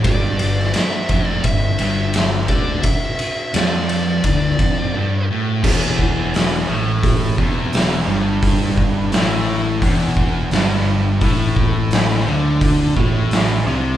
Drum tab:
CC |----------------|----------------|x---------------|----------------|
RD |x-x-x-x-x-x-x-x-|x-x-x-x-x-x-----|----------------|----------------|
HH |----------------|----------------|----o---o---o---|o---o---o---o---|
SD |---oo-------o---|----o-----------|----o-------o---|----o-------o---|
BD |o-----o-o-----o-|o-------o-o-----|o-o-----o-o-----|o-o-----o-o-----|

CC |----------------|
RD |----------------|
HH |o---o---o---o---|
SD |----oo------o---|
BD |o-o-----o-o-----|